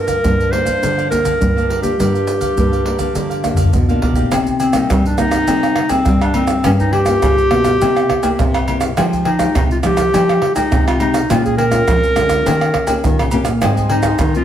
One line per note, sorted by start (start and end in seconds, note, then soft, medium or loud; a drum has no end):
0.00 0.15 G2 medium
0.00 0.21 G2 soft
0.00 0.19 F3 medium
0.00 0.19 A#3 soft
0.00 0.20 D4 medium
0.00 0.53 A#4 medium
0.07 0.37 A#4 soft
0.07 0.37 D5 medium
0.07 0.36 F5 medium
0.07 pandeiro soft
0.07 maracas medium
0.07 surdo soft
0.24 0.74 G2 medium
0.24 0.79 D3 medium
0.24 0.48 F3 soft
0.24 0.49 A#3 soft
0.24 0.49 D4 medium
0.24 pandeiro medium
0.24 maracas medium
0.24 surdo medium
0.39 0.51 A#4 soft
0.39 0.52 D5 soft
0.39 0.52 F5 soft
0.39 pandeiro soft
0.39 maracas soft
0.52 0.61 F3 soft
0.52 0.61 A#3 soft
0.52 0.62 D4 medium
0.52 0.66 G4 soft
0.52 0.66 A#4 medium
0.52 1.09 C5 loud
0.52 0.65 D5 soft
0.52 0.64 F5 soft
0.52 pandeiro medium
0.65 1.05 F3 medium
0.65 1.06 A#3 medium
0.65 1.06 D4 medium
0.65 0.81 A#4 soft
0.65 0.80 D5 medium
0.65 0.80 F5 medium
0.65 pandeiro medium
0.65 maracas medium
0.65 surdo soft
0.82 1.38 G2 soft
0.82 1.32 D3 medium
0.82 0.96 G4 soft
0.82 0.96 A#4 soft
0.82 0.96 D5 soft
0.82 0.96 F5 soft
0.82 pandeiro medium
0.82 maracas medium
0.82 surdo soft
0.97 1.09 A#4 medium
0.97 1.10 D5 medium
0.97 1.10 F5 medium
0.97 pandeiro soft
0.97 maracas soft
1.10 1.35 F3 medium
1.10 1.36 A#3 medium
1.10 1.36 D4 medium
1.10 1.80 A#4 medium
1.10 muted cavaquinho stroke soft
1.10 pandeiro medium
1.10 maracas medium
1.10 surdo soft
1.24 1.54 A#4 soft
1.24 1.54 D5 medium
1.24 1.53 F5 medium
1.24 pandeiro medium
1.24 maracas medium
1.24 surdo soft
1.40 1.90 G2 medium
1.40 1.96 D3 soft
1.40 1.49 F3 soft
1.40 1.49 A#3 soft
1.40 1.50 D4 medium
1.40 pandeiro medium
1.40 maracas medium
1.40 surdo medium
1.56 1.80 F3 medium
1.56 1.80 A#3 medium
1.56 1.80 D4 medium
1.56 1.69 A#4 soft
1.56 1.69 D5 soft
1.56 1.69 F5 soft
1.56 pandeiro soft
1.56 maracas soft
1.69 1.83 G4 medium
1.69 1.83 A#4 medium
1.69 1.82 D5 medium
1.69 1.81 F5 medium
1.69 pandeiro medium
1.82 1.93 F3 medium
1.82 1.93 A#3 soft
1.82 1.94 D4 medium
1.82 3.68 G4 medium
1.82 1.98 A#4 soft
1.82 1.97 D5 soft
1.82 1.97 F5 soft
1.82 pandeiro soft
1.82 maracas medium
1.82 surdo soft
1.99 2.54 G2 soft
1.99 2.49 G2 medium
1.99 2.52 F3 soft
1.99 2.53 A#3 soft
1.99 2.53 D4 medium
1.99 2.12 G4 medium
1.99 2.13 A#4 medium
1.99 2.13 D5 medium
1.99 2.13 F5 medium
1.99 pandeiro medium
1.99 maracas medium
1.99 surdo medium
2.14 2.26 A#4 soft
2.14 2.27 D5 soft
2.14 2.27 F5 soft
2.14 pandeiro soft
2.14 maracas soft
2.27 muted cavaquinho stroke soft
2.27 pandeiro medium
2.27 maracas medium
2.40 2.70 A#4 medium
2.40 2.70 D5 medium
2.40 2.69 F5 medium
2.40 pandeiro medium
2.40 maracas medium
2.40 surdo soft
2.57 3.07 G2 medium
2.57 3.13 D3 soft
2.57 2.82 F3 medium
2.57 2.82 A#3 soft
2.57 2.82 D4 medium
2.57 pandeiro medium
2.57 maracas medium
2.57 surdo medium
2.72 2.84 A#4 soft
2.72 2.85 D5 soft
2.72 2.85 F5 soft
2.72 pandeiro soft
2.72 maracas soft
2.85 2.96 F3 soft
2.85 2.96 A#3 soft
2.85 2.96 D4 medium
2.85 2.99 G4 soft
2.85 2.99 A#4 soft
2.85 2.98 D5 medium
2.85 2.97 F5 soft
2.85 pandeiro medium
2.98 3.39 F3 medium
2.98 3.39 A#3 soft
2.98 3.39 D4 medium
2.98 3.14 A#4 soft
2.98 3.13 D5 soft
2.98 3.13 F5 medium
2.98 pandeiro soft
2.98 maracas medium
2.98 surdo soft
3.15 3.71 G2 soft
3.15 3.65 D3 medium
3.15 3.29 G4 soft
3.15 3.29 A#4 soft
3.15 3.29 D5 soft
3.15 3.29 F5 soft
3.15 pandeiro medium
3.15 maracas medium
3.15 surdo medium
3.30 3.42 A#4 soft
3.30 3.42 D5 medium
3.30 3.42 F5 medium
3.30 pandeiro soft
3.30 maracas soft
3.43 3.83 F3 medium
3.43 3.84 A#3 medium
3.43 3.84 D4 medium
3.43 muted cavaquinho stroke soft
3.43 pandeiro medium
3.43 tamborim medium
3.43 maracas medium
3.43 surdo soft
3.54 3.86 F5 medium
3.54 surdo medium
3.54 pandeiro medium
3.54 maracas medium
3.57 3.87 A#4 soft
3.57 3.86 D5 soft
3.57 surdo soft
3.64 surdo medium
3.73 4.23 B2 medium
3.73 4.30 D3 soft
3.73 surdo medium
3.73 pandeiro medium
3.73 maracas medium
3.73 surdo medium
3.89 4.13 F3 medium
3.89 4.13 A#3 medium
3.89 4.13 D4 medium
3.89 4.01 A#4 soft
3.89 4.01 D5 soft
3.89 4.02 F5 soft
3.89 pandeiro soft
3.89 maracas soft
4.01 4.15 G4 medium
4.01 4.16 A#4 medium
4.01 4.15 D5 medium
4.01 4.14 F5 medium
4.01 pandeiro medium
4.01 surdo medium
4.13 4.70 A#3 soft
4.13 pandeiro soft
4.13 maracas medium
4.13 surdo medium
4.15 4.70 D#4 soft
4.15 4.70 G4 medium
4.15 4.31 A#4 soft
4.15 4.30 D5 soft
4.15 4.30 F5 soft
4.15 surdo soft
4.22 surdo medium
4.32 4.81 C3 medium
4.32 4.87 C3 soft
4.32 pandeiro medium
4.32 tamborim medium
4.32 low agogo medium
4.32 maracas medium
4.32 surdo medium
4.47 pandeiro soft
4.47 maracas soft
4.47 surdo soft
4.60 4.88 C4 medium
4.60 pandeiro medium
4.60 low agogo medium
4.60 maracas medium
4.73 5.14 G3 medium
4.73 5.14 A#3 medium
4.73 5.14 D#4 medium
4.73 pandeiro medium
4.73 tamborim medium
4.73 maracas medium
4.73 surdo soft
4.90 5.45 G2 medium
4.90 5.03 G3 medium
4.90 5.07 C4 medium
4.90 pandeiro medium
4.90 tamborim medium
4.90 high agogo medium
4.90 maracas medium
4.90 surdo loud
5.06 5.18 D4 medium
5.06 pandeiro soft
5.06 maracas soft
5.17 5.43 C3 medium
5.17 5.43 G3 medium
5.17 5.43 A#3 medium
5.17 5.43 D#4 medium
5.17 5.92 D#4 loud
5.17 pandeiro medium
5.17 tamborim medium
5.17 maracas medium
5.31 pandeiro medium
5.31 tamborim medium
5.31 maracas medium
5.31 surdo soft
5.47 6.03 C3 medium
5.47 5.87 G3 medium
5.47 5.87 A#3 medium
5.47 5.73 C4 medium
5.47 5.88 D#4 soft
5.47 pandeiro medium
5.47 low agogo medium
5.47 maracas medium
5.47 surdo medium
5.63 pandeiro soft
5.63 tamborim medium
5.63 maracas soft
5.76 pandeiro medium
5.76 tamborim medium
5.89 6.30 G3 medium
5.89 6.30 A#3 soft
5.89 6.24 C4 medium
5.89 6.30 D#4 medium
5.89 pandeiro medium
5.89 low agogo medium
5.89 maracas medium
5.89 surdo soft
6.05 6.62 G2 medium
6.05 6.56 G3 loud
6.05 pandeiro medium
6.05 tamborim medium
6.05 maracas medium
6.05 surdo loud
6.21 6.34 D4 medium
6.21 pandeiro soft
6.21 tamborim medium
6.21 high agogo medium
6.21 maracas soft
6.34 6.52 G3 medium
6.34 6.52 A#3 medium
6.34 6.62 C4 medium
6.34 6.52 D#4 medium
6.34 pandeiro medium
6.34 high agogo medium
6.47 pandeiro medium
6.47 tamborim medium
6.47 maracas medium
6.64 7.20 G2 medium
6.64 7.14 G2 medium
6.64 7.04 F3 medium
6.64 7.04 A#3 medium
6.64 6.71 C#4 loud
6.64 7.04 C#4 medium
6.64 pandeiro medium
6.64 tamborim medium
6.64 low agogo medium
6.64 maracas medium
6.64 surdo medium
6.80 6.94 D#4 medium
6.80 pandeiro soft
6.80 maracas soft
6.80 surdo soft
6.93 8.68 G4 loud
6.93 pandeiro medium
6.93 low agogo medium
7.06 7.46 F3 medium
7.06 7.46 A#3 medium
7.06 7.47 C#4 medium
7.06 pandeiro medium
7.06 tamborim medium
7.06 maracas medium
7.06 surdo soft
7.22 7.78 G2 medium
7.22 7.35 C#3 loud
7.22 pandeiro medium
7.22 tamborim medium
7.22 high agogo medium
7.22 maracas medium
7.22 surdo loud
7.38 pandeiro soft
7.38 maracas soft
7.51 7.76 B2 medium
7.51 7.68 F3 medium
7.51 7.69 A#3 medium
7.51 7.69 C#4 medium
7.51 pandeiro medium
7.51 tamborim medium
7.64 pandeiro medium
7.64 tamborim medium
7.64 maracas medium
7.64 surdo soft
7.81 8.06 C3 loud
7.81 8.36 C3 medium
7.81 8.20 A#3 soft
7.81 8.20 E4 medium
7.81 8.21 G4 medium
7.81 pandeiro medium
7.81 low agogo medium
7.81 maracas medium
7.81 surdo medium
7.97 pandeiro soft
7.97 tamborim medium
7.97 maracas soft
8.10 pandeiro medium
8.10 tamborim medium
8.10 surdo soft
8.23 8.63 A#3 medium
8.23 8.63 E4 medium
8.23 8.63 G4 medium
8.23 pandeiro medium
8.23 low agogo medium
8.23 maracas medium
8.23 surdo soft
8.39 8.95 G2 medium
8.39 8.89 C3 loud
8.39 pandeiro medium
8.39 tamborim medium
8.39 maracas medium
8.39 surdo medium
8.54 pandeiro soft
8.54 tamborim medium
8.54 high agogo medium
8.54 maracas soft
8.68 8.93 A#3 medium
8.68 8.93 E4 medium
8.68 8.93 G4 medium
8.68 pandeiro medium
8.68 high agogo medium
8.81 pandeiro medium
8.81 tamborim medium
8.81 maracas medium
8.97 9.47 F3 medium
8.97 9.53 F3 medium
8.97 9.25 G#3 soft
8.97 9.25 D#4 medium
8.97 9.25 G4 medium
8.97 pandeiro medium
8.97 tamborim medium
8.97 low agogo loud
8.97 maracas medium
8.97 surdo medium
9.13 pandeiro soft
9.13 maracas soft
9.13 surdo soft
9.25 9.53 D#4 medium
9.25 pandeiro medium
9.25 low agogo medium
9.39 9.79 G#3 medium
9.39 9.79 D#4 medium
9.39 9.79 G4 medium
9.39 pandeiro medium
9.39 tamborim medium
9.39 maracas medium
9.39 surdo soft
9.55 9.68 C3 loud
9.55 10.11 C3 medium
9.55 9.63 D#4 medium
9.55 pandeiro medium
9.55 tamborim medium
9.55 high agogo medium
9.55 maracas medium
9.55 surdo loud
9.71 9.78 F4 medium
9.71 pandeiro soft
9.71 maracas soft
9.83 10.09 F3 medium
9.83 10.01 G#3 medium
9.83 10.01 D#4 medium
9.83 10.01 G4 medium
9.83 10.53 G4 loud
9.83 pandeiro medium
9.83 tamborim medium
9.83 maracas medium
9.97 pandeiro medium
9.97 tamborim medium
9.97 maracas medium
9.97 surdo soft
10.13 10.69 F3 medium
10.13 10.38 F3 loud
10.13 10.53 G#3 medium
10.13 10.53 D#4 medium
10.13 10.53 G4 medium
10.13 pandeiro medium
10.13 low agogo medium
10.13 maracas medium
10.13 surdo medium
10.29 pandeiro soft
10.29 tamborim medium
10.29 maracas soft
10.42 pandeiro medium
10.42 tamborim medium
10.55 10.96 G#3 medium
10.55 10.83 D#4 medium
10.55 10.96 D#4 medium
10.55 10.96 G4 medium
10.55 pandeiro medium
10.55 low agogo medium
10.55 maracas medium
10.55 surdo soft
10.71 11.21 C3 loud
10.71 11.27 C3 medium
10.71 pandeiro medium
10.71 tamborim medium
10.71 maracas medium
10.71 surdo loud
10.87 10.99 F4 medium
10.87 pandeiro soft
10.87 tamborim medium
10.87 high agogo medium
10.87 maracas soft
11.00 11.18 G#3 medium
11.00 11.32 D#4 medium
11.00 11.18 D#4 medium
11.00 11.18 G4 medium
11.00 pandeiro medium
11.00 high agogo medium
11.14 pandeiro medium
11.14 tamborim medium
11.14 maracas medium
11.30 11.79 A#2 medium
11.30 11.85 A#2 medium
11.30 11.69 G#3 soft
11.30 11.69 C#4 medium
11.30 11.44 F4 medium
11.30 11.69 F4 medium
11.30 pandeiro loud
11.30 tamborim medium
11.30 low agogo medium
11.30 maracas medium
11.30 surdo medium
11.45 11.57 G#4 medium
11.45 pandeiro soft
11.45 maracas soft
11.45 surdo soft
11.57 13.29 A#4 loud
11.57 pandeiro medium
11.57 low agogo medium
11.71 12.11 G#3 medium
11.71 12.11 C#4 medium
11.71 12.12 F4 medium
11.71 pandeiro medium
11.71 tamborim medium
11.71 maracas medium
11.71 surdo soft
11.88 12.43 F2 medium
11.88 12.01 F3 medium
11.88 pandeiro medium
11.88 tamborim medium
11.88 high agogo medium
11.88 maracas medium
11.88 surdo medium
12.03 pandeiro soft
12.03 maracas soft
12.15 12.41 D3 medium
12.15 12.41 G#3 medium
12.15 12.41 C#4 medium
12.15 12.41 F4 medium
12.15 pandeiro medium
12.15 tamborim medium
12.15 maracas medium
12.29 pandeiro medium
12.29 tamborim medium
12.29 maracas medium
12.29 surdo soft
12.45 13.01 D#3 soft
12.45 12.71 D#3 loud
12.45 12.85 A#3 medium
12.45 12.85 C#4 medium
12.45 12.85 G4 medium
12.45 pandeiro medium
12.45 low agogo medium
12.45 maracas medium
12.45 surdo medium
12.61 pandeiro soft
12.61 tamborim medium
12.61 maracas soft
12.74 pandeiro medium
12.74 tamborim medium
12.74 surdo soft
12.87 13.28 A#3 medium
12.87 13.28 C#4 medium
12.87 13.28 G4 medium
12.87 pandeiro medium
12.87 low agogo medium
12.87 maracas medium
12.87 surdo soft
13.04 13.60 A#2 soft
13.04 13.17 D#3 loud
13.04 pandeiro medium
13.04 tamborim medium
13.04 maracas medium
13.04 surdo loud
13.19 13.32 C#3 medium
13.19 pandeiro soft
13.19 tamborim medium
13.19 high agogo medium
13.19 maracas soft
13.31 13.46 C3 medium
13.31 13.50 A#3 medium
13.31 13.50 C#4 medium
13.31 13.51 G4 medium
13.31 pandeiro medium
13.31 high agogo medium
13.31 maracas medium
13.45 13.60 A#2 medium
13.45 pandeiro medium
13.45 tamborim medium
13.45 maracas medium
13.62 14.18 G#2 medium
13.62 14.12 G#2 medium
13.62 13.87 G3 medium
13.62 13.87 C4 soft
13.62 13.87 D#4 medium
13.62 13.76 G4 medium
13.62 13.76 C5 medium
13.62 13.76 D#5 medium
13.62 13.76 G#5 medium
13.62 pandeiro loud
13.62 tamborim medium
13.62 low agogo medium
13.62 maracas medium
13.62 surdo medium
13.77 13.90 C5 soft
13.77 13.90 D#5 soft
13.77 13.91 G#5 medium
13.77 pandeiro soft
13.77 maracas soft
13.77 surdo soft
13.89 14.30 G3 medium
13.89 14.30 C4 medium
13.89 14.18 D#4 medium
13.89 14.30 D#4 medium
13.89 muted cavaquinho stroke soft
13.89 pandeiro medium
13.89 low agogo medium
14.03 14.34 C5 medium
14.03 14.34 D#5 medium
14.03 14.33 G#5 medium
14.03 pandeiro medium
14.03 tamborim medium
14.03 maracas medium
14.03 surdo soft
14.19 14.44 D#3 medium
14.19 14.33 D#3 loud
14.19 14.34 D#4 medium
14.19 pandeiro medium
14.19 tamborim medium
14.19 high agogo medium
14.19 maracas medium
14.19 surdo medium
14.35 14.44 G3 medium
14.35 14.44 C4 medium
14.35 14.44 D#4 medium
14.35 14.44 F4 medium
14.35 14.44 C5 soft
14.35 14.44 D#5 soft
14.35 14.44 G#5 soft
14.35 pandeiro soft
14.35 maracas soft